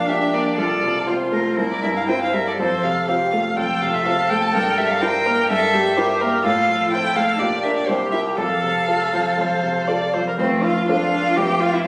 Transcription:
0.00 0.55 A#1 soft
0.00 0.23 A#2 soft
0.00 0.59 D4 soft
0.00 0.11 F5 medium
0.08 0.31 D4 soft
0.08 0.58 G4 soft
0.08 0.31 G4 soft
0.08 0.36 E5 medium
0.34 0.58 A#3 soft
0.34 0.57 D5 soft
0.57 1.54 C2 soft
0.57 1.06 F4 soft
0.57 1.02 A4 soft
0.57 1.09 D5 medium
0.83 1.22 C3 soft
1.06 1.30 C4 soft
1.06 1.14 F4 soft
1.06 1.58 F4 soft
1.06 1.30 F4 soft
1.06 1.70 C5 soft
1.32 1.57 A3 soft
1.32 1.56 A#4 soft
1.56 2.56 C2 soft
1.56 2.38 E4 soft
1.56 2.10 A#4 soft
1.72 1.82 D5 soft
1.83 2.24 G2 soft
1.83 1.88 E5 soft
1.97 2.02 F5 soft
2.08 2.31 C4 soft
2.08 2.32 E4 soft
2.08 2.33 C5 soft
2.08 2.20 G5 medium
2.22 2.35 F5 soft
2.33 2.59 G3 soft
2.33 2.49 A#4 soft
2.33 2.46 E5 soft
2.47 2.59 A4 soft
2.47 2.52 D5 soft
2.58 3.54 F2 soft
2.58 3.09 A4 soft
2.58 2.85 C5 medium
2.83 3.23 C3 soft
2.83 3.06 F5 medium
3.07 3.30 C4 soft
3.07 3.31 F4 soft
3.07 3.34 G4 soft
3.07 3.58 F5 medium
3.32 3.72 A3 soft
3.32 3.58 F4 soft
3.56 4.51 F2 soft
3.56 4.07 F4 soft
3.56 4.55 A4 soft
3.56 3.83 G5 medium
3.81 4.21 C3 soft
3.81 3.95 F5 medium
3.94 4.07 E5 medium
4.05 4.28 C4 soft
4.05 4.28 F4 soft
4.05 5.03 A4 medium
4.05 4.31 F5 medium
4.30 4.54 A3 soft
4.30 4.44 G5 medium
4.42 4.53 A5 medium
4.53 5.47 G2 soft
4.53 5.03 A#4 soft
4.53 4.79 G5 medium
4.78 5.17 G3 soft
4.78 4.92 E5 medium
4.90 5.03 F5 medium
5.01 5.24 E4 soft
5.01 5.48 A#4 medium
5.01 5.24 A#4 soft
5.01 5.27 C5 soft
5.01 5.49 G5 medium
5.26 5.64 A#3 soft
5.26 5.52 A#4 medium
5.49 6.42 G2 soft
5.49 5.96 A4 medium
5.49 5.75 A4 medium
5.49 6.20 E5 medium
5.74 6.12 G3 soft
5.74 5.99 G4 medium
5.97 6.19 E4 soft
5.97 6.45 G4 medium
5.97 6.19 A#4 soft
5.97 6.23 C5 medium
6.21 6.45 A#3 soft
6.21 6.45 A#4 medium
6.44 7.37 A2 medium
6.44 6.93 F4 medium
6.44 6.68 A4 medium
6.44 6.89 F5 medium
6.69 7.07 F3 soft
6.69 7.42 A4 medium
6.91 7.14 C4 soft
6.91 7.40 E4 medium
6.91 7.14 C5 soft
6.91 7.17 G5 medium
7.16 7.40 A3 soft
7.16 7.41 F5 medium
7.38 7.87 A#2 medium
7.38 7.87 D4 medium
7.38 7.88 G4 medium
7.38 7.65 D5 medium
7.63 7.86 D4 soft
7.63 7.86 A#4 soft
7.63 7.76 E5 medium
7.77 7.89 D5 medium
7.87 8.37 C2 medium
7.87 8.39 G4 medium
7.87 8.39 G4 soft
7.87 8.11 C5 medium
8.12 8.35 E4 soft
8.12 8.36 A#4 soft
8.12 8.20 E5 medium
8.37 9.35 F2 soft
8.37 10.13 A4 medium
8.37 8.83 A4 soft
8.37 10.10 F5 medium
8.63 9.03 C3 soft
8.88 9.11 F4 soft
8.88 9.11 A4 soft
9.13 9.53 F3 soft
9.13 9.22 C5 soft
9.38 10.36 F2 soft
9.38 9.89 C5 soft
9.63 10.03 C3 soft
9.88 10.11 F4 soft
9.88 10.11 A4 soft
9.88 10.15 D5 soft
10.14 10.39 F3 soft
10.14 10.26 C5 soft
10.28 10.33 A#4 soft
10.39 11.34 F1 soft
10.39 11.34 F2 soft
10.39 10.85 A3 soft
10.39 10.64 C4 medium
10.39 10.47 C5 medium
10.63 10.87 F4 medium
10.63 10.88 F5 medium
10.88 11.33 F3 soft
10.88 11.33 C4 soft
10.88 11.38 D4 medium
10.88 11.38 F4 medium
10.88 11.34 A4 soft
10.88 11.39 F5 medium
11.36 11.87 F1 soft
11.36 11.87 F2 soft
11.36 11.86 C4 soft
11.36 11.62 G4 medium
11.36 11.63 G5 medium
11.60 11.75 F4 medium
11.60 11.73 F5 medium
11.73 11.84 E4 medium
11.73 11.84 E5 medium

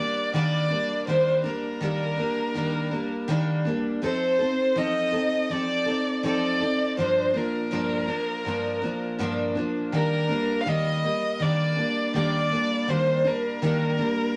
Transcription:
0.00 0.33 G3 soft
0.00 0.34 A#3 soft
0.00 0.33 D4 soft
0.00 0.34 D5 loud
0.34 0.71 D#3 medium
0.34 0.71 G3 medium
0.34 0.71 A#3 medium
0.34 0.69 D4 medium
0.34 1.04 D5 medium
0.70 1.07 G3 soft
0.70 1.07 A#3 soft
0.70 1.07 D4 soft
1.07 1.44 D#3 medium
1.07 1.45 G3 medium
1.07 1.44 A#3 medium
1.07 1.42 D4 medium
1.07 1.42 C5 medium
1.44 1.81 G3 soft
1.44 1.81 A#3 medium
1.44 1.81 D4 medium
1.44 3.62 A#4 medium
1.81 2.18 D#3 medium
1.81 2.19 G3 medium
1.81 2.18 A#3 medium
1.81 2.16 D4 medium
2.17 2.54 G3 soft
2.17 2.55 A#3 soft
2.17 2.55 D4 medium
2.54 2.92 D#3 medium
2.54 2.92 G3 medium
2.54 2.92 A#3 medium
2.54 2.90 D4 medium
2.91 3.28 G3 soft
2.91 3.28 A#3 medium
2.91 3.29 D4 medium
3.28 3.65 D#3 medium
3.28 3.66 G3 medium
3.28 3.66 A#3 medium
3.28 3.64 D4 loud
3.65 4.01 G3 medium
3.65 4.02 A#3 medium
3.65 4.02 D4 medium
4.02 4.39 F3 medium
4.02 4.40 C4 medium
4.02 4.39 D#4 medium
4.02 4.38 A4 medium
4.02 4.79 C5 loud
4.39 4.76 C4 soft
4.39 4.76 D#4 soft
4.39 4.76 A4 medium
4.76 5.13 F3 medium
4.76 5.14 C4 medium
4.76 5.13 D#4 medium
4.76 5.11 A4 medium
4.76 5.52 D#5 loud
5.12 5.50 C4 soft
5.12 5.51 D#4 soft
5.12 5.50 A4 soft
5.50 5.87 F3 medium
5.50 5.88 C4 medium
5.50 5.87 D#4 medium
5.50 5.85 A4 medium
5.50 6.24 D5 loud
5.86 6.23 C4 soft
5.86 6.24 D#4 soft
5.86 6.24 A4 medium
6.23 6.61 F3 medium
6.23 6.61 C4 medium
6.23 6.61 D#4 medium
6.23 6.59 A4 medium
6.23 6.94 D5 loud
6.60 6.99 C4 soft
6.60 6.98 D#4 medium
6.60 6.97 A4 medium
6.97 7.35 G2 medium
6.97 7.35 F3 medium
6.97 7.35 A#3 medium
6.97 7.33 D4 medium
6.97 7.38 C5 medium
7.34 7.71 F3 soft
7.34 7.71 A#3 soft
7.34 7.71 D4 medium
7.34 9.57 A#4 medium
7.71 8.08 G2 medium
7.71 8.09 F3 medium
7.71 8.08 A#3 medium
7.71 8.07 D4 medium
8.08 8.45 F3 soft
8.08 8.46 A#3 soft
8.08 8.45 D4 medium
8.45 8.82 G2 medium
8.45 8.83 F3 medium
8.45 8.82 A#3 medium
8.45 8.80 D4 medium
8.82 9.18 F3 soft
8.82 9.19 A#3 soft
8.82 9.19 D4 medium
9.19 9.56 G2 medium
9.19 9.56 F3 medium
9.19 9.56 A#3 medium
9.19 9.54 D4 medium
9.55 9.93 F3 medium
9.55 9.93 A#3 medium
9.55 9.93 D4 medium
9.92 10.30 D#3 medium
9.92 10.30 G3 medium
9.92 10.30 A#3 medium
9.92 10.28 D4 medium
9.92 10.63 A#4 medium
10.29 10.66 G3 soft
10.29 10.66 A#3 soft
10.29 10.67 D4 medium
10.61 10.70 F5 medium
10.66 11.04 D#3 medium
10.66 11.04 G3 medium
10.66 11.03 A#3 medium
10.66 11.43 D#5 loud
11.04 11.40 G3 soft
11.04 11.41 A#3 medium
11.40 11.77 D#3 medium
11.40 11.78 G3 medium
11.40 11.77 A#3 medium
11.40 11.76 D4 medium
11.40 12.15 D5 loud
11.77 12.14 G3 soft
11.77 12.14 A#3 soft
11.77 12.14 D4 soft
12.14 12.51 D#3 medium
12.14 12.52 G3 medium
12.14 12.51 A#3 medium
12.14 12.49 D4 medium
12.14 12.91 D5 loud
12.51 12.88 G3 soft
12.51 12.88 A#3 medium
12.51 12.88 D4 soft
12.88 13.25 D#3 medium
12.88 13.26 G3 medium
12.88 13.25 A#3 medium
12.88 13.23 D4 medium
12.88 13.29 C5 medium
13.25 13.62 G3 soft
13.25 13.62 A#3 soft
13.25 13.62 D4 medium
13.25 14.36 A#4 medium
13.62 13.99 D#3 medium
13.62 14.00 G3 medium
13.62 13.99 A#3 medium
13.62 13.98 D4 medium
13.99 14.36 G3 soft
13.99 14.36 A#3 soft
13.99 14.36 D4 medium

